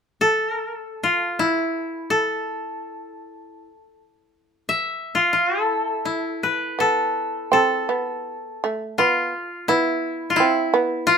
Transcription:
0.21 A4
1.04 F4
1.39 E4
2.10 A4
4.69 E5
5.15 F4
5.33 F4
5.62 E4 A4
6.05 E4
6.43 B4
6.79 B3 A4
7.52 C4 A4
7.89 B3
8.64 A3
8.98 B3 F4
9.68 B3 E4
10.30 F4
10.36 E4
10.40 C4
10.74 B3
11.07 F4

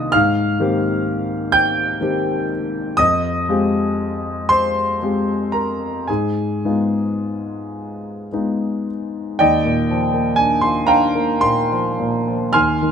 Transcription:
Already playing: D#3 A#3 D4 F4 D#5 D#6
0.12 G#2 F5 F6
0.60 D#3 A#3 C4 G4
1.52 G5 G6
2.01 D#3 A#3 C4 G4
2.97 F2 D#5 D#6
3.49 G#3 C4 F4 G4
4.49 C5 C6
5.02 G#3 C4 F4 G4
5.52 A#4 A#5
6.07 G#2 G#4 G#5
6.65 G#3 B3 D#4 F4
8.33 G#3 B3 D#4 F4
9.39 D#2 D5 D#5 G5
9.65 A#2
9.90 F3
10.13 A#3
10.36 D4 G#5
10.61 F4 C6
10.87 D4 F5 G5 A#5
11.15 A#3
11.41 A#2 C6
11.71 F3
11.99 A#2
12.28 F3
12.53 D#2 G#5 C6 F6
12.82 D#3

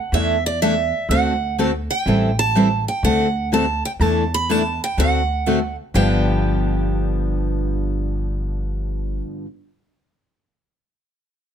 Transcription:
Already playing: F#5
0.12 E2 E3 A3 D4 E4 A4 E5
0.46 D5
0.62 E3 A3 D4 E4 A4 E5
1.09 D2 D3 A3 C4 F#4 A4 F#5
1.58 D3 A3 C4 F#4 A4
1.91 G5
2.06 A1 E3 G3 C4 E4 A4
2.39 A5
2.55 E3 G3 C4 E4 A4
2.88 G5
3.03 D2 D3 A3 C4 F#4 A4 F#5
3.52 D3 A3 C4 F#4 A4 A5
3.85 G5
3.99 E2 E3 A3 D4 E4 A4 A5
4.34 B5
4.49 E3 A3 D4 E4 A4 A5
4.84 G5
4.97 D2 D3 A3 C4 F#4 A4 F#5
5.47 D3 A3 C4 F#4 A4
5.94 G1 G2 D3 F3 B3 D4 G4 G5

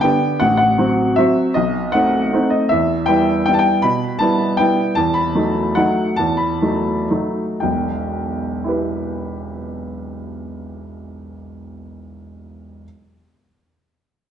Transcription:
0.01 D3 B3 G4 G5
0.40 A1 F#5
0.57 F#5
0.78 F#3 C4 F#4
1.16 F#3 C4 F#4 E5
1.54 B1 D#5
1.92 A3 C4 D#4 F#5
2.33 A3 C4 D#4
2.50 D#5
2.69 E2 E5
3.06 G3 B3 E4 G5
3.46 G3 B3 E4 G5
3.54 A5
3.59 G5
3.82 B2 B5
4.19 G3 B3 E4 A5
4.57 G3 B3 E4 G5
4.95 E2 A5
5.14 B5
5.35 F#3 A3 D#4
5.75 F#3 A3 D#4 F#5
6.16 E2 A5
6.37 B5
6.62 F#3 A3 D#4
7.11 F#3 A3 D#4
7.60 E1 B1 G5
8.64 E4 G4
8.68 B4

